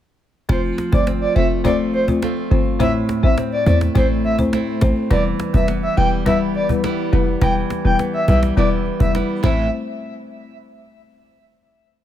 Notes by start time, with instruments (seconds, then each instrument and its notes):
0.49 808-style bass F1, nylon-string guitar F3, marimba A3 C4 F4 C5, soft synth lead C5, cajon bass
0.64 cajon slap
0.78 cajon slap
0.92 808-style bass G1, marimba A3 C4 F4 C5, soft synth lead D5, cajon bass
1.07 nylon-string guitar C4, cajon slap
1.21 soft synth lead D5, cajon slap
1.35 808-style bass F1, marimba A3 C4 F4 C5, nylon-string guitar A3, soft synth lead E5, cajon slap
1.50 cajon slap
1.64 marimba A3 C4 F4 C5, nylon-string guitar A3 C4 F4, soft synth lead D5, cajon bass
1.93 soft synth lead C5, cajon slap
2.08 marimba A3 C4 F4 C5, cajon bass
2.22 nylon-string guitar A3 C4 F4, cajon slap
2.37 cajon slap
2.51 808-style bass G1, marimba A3 C4 F4 C5, nylon-string guitar C4, cajon slap
2.66 cajon slap
2.79 808-style bass A1, nylon-string guitar A2, marimba A3 C4 E4 C5, soft synth lead E5, cajon bass
2.95 cajon slap
3.09 cajon slap
3.23 808-style bass A1, marimba A3 C4 E4 C5, soft synth lead E5, cajon slap
3.38 nylon-string guitar C4, cajon slap
3.52 soft synth lead D5, cajon slap
3.66 808-style bass E2, marimba A3 C4 E4 C5, nylon-string guitar A3, soft synth lead D5, cajon bass
3.81 cajon slap
3.95 808-style bass A1, marimba A3 C4 E4 C5, nylon-string guitar A3 C4 E4, soft synth lead C5, cajon bass
4.24 soft synth lead E5, cajon slap
4.38 808-style bass B1, marimba A3 C4 E4 C5, cajon bass
4.53 nylon-string guitar A3 C4 E4, cajon slap
4.67 cajon slap
4.81 808-style bass A1, marimba A3 C4 E4 C5, nylon-string guitar C4, cajon bass, cajon slap
4.96 cajon slap
5.10 808-style bass E1, nylon-string guitar E3, marimba G3 B3 E4 B4, soft synth lead D5, cajon bass
5.40 cajon slap
5.54 808-style bass F1, marimba G3 B3 E4 B4, soft synth lead E5, cajon bass
5.68 nylon-string guitar B3, cajon slap
5.83 soft synth lead E5, cajon slap
5.97 808-style bass E1, marimba G3 B3 E4 B4, nylon-string guitar G3, soft synth lead G5, cajon slap
6.11 cajon slap
6.26 marimba G3 B3 E4 B4, nylon-string guitar G3 B3 E4, soft synth lead E5, cajon bass
6.41 cajon slap
6.55 soft synth lead D5, cajon slap
6.69 marimba G3 B3 E4 B4, cajon bass
6.84 nylon-string guitar G3 B3 E4, cajon slap
6.98 cajon slap
7.12 808-style bass F1, marimba G3 B3 E4 B4, nylon-string guitar B3, cajon slap
7.27 cajon slap
7.41 808-style bass E1, nylon-string guitar E3, marimba G3 B3 E4 B4, soft synth lead G5, cajon bass
7.56 cajon slap
7.70 cajon slap
7.85 808-style bass E1, marimba G3 B3 E4 B4, soft synth lead G5, cajon slap
7.99 nylon-string guitar B3, cajon slap
8.14 soft synth lead E5, cajon slap
8.28 808-style bass B1, marimba G3 B3 E4 B4, nylon-string guitar G3, soft synth lead E5, cajon bass
8.43 cajon slap
8.57 808-style bass E1, marimba G3 B3 E4 B4, nylon-string guitar G3 B3 E4, soft synth lead D5, cajon slap
8.72 cajon slap
8.86 cajon slap
9.00 808-style bass F1, marimba G3 B3 E4 B4, soft synth lead E5, cajon bass
9.15 nylon-string guitar G3 B3 E4, cajon slap
9.29 cajon slap
9.43 808-style bass A1, nylon-string guitar A2 E3 A3 C4 E4, marimba A3 C4 E4 C5, soft synth lead E5, cajon bass